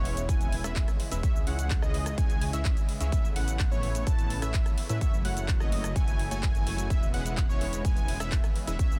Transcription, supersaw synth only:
0.00 0.26 G#3 medium
0.00 0.26 C#4 medium
0.00 0.26 E4 medium
0.00 0.26 B4 medium
0.00 0.26 C#5 loud
0.29 0.61 G#3 medium
0.29 0.61 C#4 medium
0.29 0.61 E4 medium
0.29 0.61 B4 medium
0.29 0.61 G#5 loud
0.64 0.87 G#3 medium
0.64 0.87 C#4 medium
0.64 0.87 E4 medium
0.64 0.87 B4 medium
0.64 0.87 E5 loud
1.12 1.21 G#3 medium
1.12 1.21 C#4 medium
1.12 1.21 E4 medium
1.12 1.21 B4 medium
1.12 1.21 E5 medium
1.23 1.38 C#4 medium
1.23 1.38 E4 medium
1.23 1.38 C#5 medium
1.23 1.38 E5 loud
1.47 1.80 G#3 medium
1.47 1.80 C#4 medium
1.47 1.80 E4 medium
1.47 1.80 C#5 medium
1.47 1.80 F#5 medium
1.82 2.15 G#3 medium
1.82 2.15 C#4 medium
1.82 2.15 E4 medium
1.82 2.15 C#5 medium
1.82 2.15 D#5 medium
2.18 2.50 G#3 medium
2.18 2.50 C#4 medium
2.18 2.50 E4 medium
2.18 2.50 C#5 medium
2.18 2.50 G#5 loud
2.53 2.76 G#3 medium
2.53 2.76 C#4 medium
2.53 2.76 E4 medium
2.53 2.76 C#5 medium
2.53 2.76 E5 loud
3.01 3.10 G#3 medium
3.01 3.09 C#4 medium
3.01 3.10 E4 medium
3.01 3.10 C#5 medium
3.01 3.09 E5 medium
3.12 3.27 A3 medium
3.12 3.27 C#4 medium
3.12 3.27 E4 medium
3.12 3.27 B4 medium
3.12 3.27 E5 loud
3.36 3.69 A3 medium
3.36 3.69 C#4 medium
3.36 3.69 E4 medium
3.36 3.69 B4 medium
3.36 3.69 F#5 medium
3.71 4.04 A3 medium
3.71 4.04 C#4 medium
3.71 4.04 E4 medium
3.71 4.04 B4 medium
3.71 4.04 C#5 medium
4.07 4.39 A3 medium
4.07 4.39 C#4 medium
4.07 4.39 E4 medium
4.07 4.39 B4 medium
4.07 4.39 A5 loud
4.42 4.65 A3 medium
4.42 4.65 C#4 medium
4.42 4.65 E4 medium
4.42 4.65 B4 medium
4.42 4.65 E5 loud
4.89 4.98 A3 medium
4.89 4.98 C#4 medium
4.89 4.98 E4 medium
4.89 4.98 B4 medium
4.89 4.98 E5 medium
5.01 5.15 A3 medium
5.01 5.15 E4 medium
5.01 5.15 F#4 medium
5.01 5.15 C#5 medium
5.01 5.15 E5 loud
5.25 5.58 A3 medium
5.25 5.58 E4 medium
5.25 5.58 F#4 medium
5.25 5.58 C#5 medium
5.25 5.58 F#5 medium
5.60 5.93 A3 medium
5.60 5.93 E4 medium
5.60 5.93 F#4 medium
5.60 5.93 C#5 medium
5.60 5.93 D#5 medium
5.96 6.28 A3 medium
5.96 6.28 E4 medium
5.96 6.28 F#4 medium
5.96 6.28 C#5 medium
5.96 6.28 G#5 loud
6.31 6.64 A3 medium
6.31 6.64 E4 medium
6.31 6.64 F#4 medium
6.31 6.64 C#5 medium
6.31 6.64 G#5 loud
6.67 6.87 A3 medium
6.67 6.87 E4 medium
6.67 6.87 F#4 medium
6.67 6.87 C#5 medium
6.67 6.87 G#5 medium
6.90 7.04 G#3 medium
6.90 7.04 C#4 medium
6.90 7.04 E4 medium
6.90 7.04 B4 medium
6.90 7.04 E5 loud
7.14 7.47 G#3 medium
7.14 7.47 C#4 medium
7.14 7.47 E4 medium
7.14 7.47 B4 medium
7.14 7.47 F#5 medium
7.49 7.82 G#3 medium
7.49 7.82 C#4 medium
7.49 7.82 E4 medium
7.49 7.82 B4 medium
7.49 7.82 C#5 loud
7.85 8.17 G#3 medium
7.85 8.17 C#4 medium
7.85 8.17 E4 medium
7.85 8.17 B4 medium
7.85 8.17 G#5 medium
8.20 8.43 G#3 medium
8.20 8.43 C#4 medium
8.20 8.43 E4 medium
8.20 8.43 B4 medium
8.20 8.43 E5 loud
8.67 8.76 G#3 medium
8.67 8.76 C#4 medium
8.67 8.76 E4 medium
8.67 8.76 B4 medium
8.67 8.76 E5 medium
8.79 8.93 G#3 medium
8.79 8.93 C#4 medium
8.79 8.93 E4 medium
8.79 8.93 C#5 medium
8.79 8.93 E5 loud

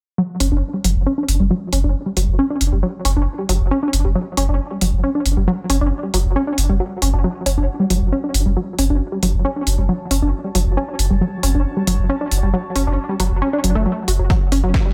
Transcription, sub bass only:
0.40 0.51 F#1 medium
0.52 0.62 F#1 medium
0.84 0.95 F#1 medium
0.96 1.06 F#1 medium
1.28 1.39 F#1 loud
1.40 1.50 F#1 medium
1.73 1.84 F#1 medium
1.84 1.94 F#1 medium
2.17 2.28 F#1 medium
2.28 2.39 F#1 medium
2.61 2.72 F#1 medium
2.72 2.83 F#1 medium
3.05 3.16 F#1 medium
3.17 3.27 F#1 medium
3.49 3.60 F#1 loud
3.61 3.71 F#1 medium
3.93 4.04 F#1 medium
4.05 4.15 F#1 medium
4.37 4.48 F#1 medium
4.49 4.59 F#1 medium
4.82 4.92 F#1 loud
4.93 5.03 F#1 medium
5.26 5.37 F#1 loud
5.37 5.47 F#1 medium
5.70 5.81 F#1 medium
5.81 5.92 F#1 medium
6.14 6.25 F#1 medium
6.25 6.36 F#1 medium
6.58 6.69 F#1 medium
6.70 6.80 F#1 medium
7.02 7.13 F#1 loud
7.14 7.24 F#1 medium
7.46 7.57 F#1 medium
7.58 7.68 F#1 medium
7.90 8.01 F#1 medium
8.02 8.12 F#1 medium
8.34 8.45 F#1 loud
8.46 8.56 F#1 medium
8.78 8.89 F#1 loud
8.90 9.00 F#1 medium
9.23 9.34 F#1 medium
9.34 9.45 F#1 medium
9.67 9.78 F#1 loud
9.78 9.89 F#1 medium
10.11 10.22 F#1 loud
10.22 10.33 F#1 medium
10.55 10.66 F#1 loud
10.66 10.77 F#1 medium
10.99 11.10 F#1 medium
11.11 11.21 F#1 medium
11.43 11.54 F#1 loud
11.55 11.65 F#1 medium
11.87 11.98 F#1 loud
11.99 12.09 F#1 medium
12.32 12.42 F#1 loud
12.43 12.53 F#1 medium
12.76 12.86 F#1 medium
12.87 12.97 F#1 medium
13.20 13.31 F#1 loud
13.31 13.42 F#1 medium
13.64 13.75 F#1 loud
13.75 13.86 F#1 medium
14.08 14.19 F#1 medium
14.19 14.30 F#1 medium
14.52 14.63 F#1 medium
14.64 14.74 F#1 medium

